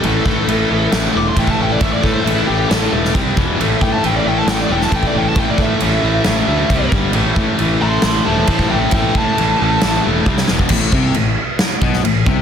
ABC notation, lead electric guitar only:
X:1
M:4/4
L:1/16
Q:1/4=135
K:Am
V:1 name="Lead electric guitar"
A8 z2 d' c' g a g d | e d A c A E G2 A2 z6 | z2 g a g d g a g d g a g d g a | g d e12 z2 |
z6 [ac']2 [ac']2 [ca]2 [ca]2 [eg]2 | [eg]2 a8 z6 | z16 |]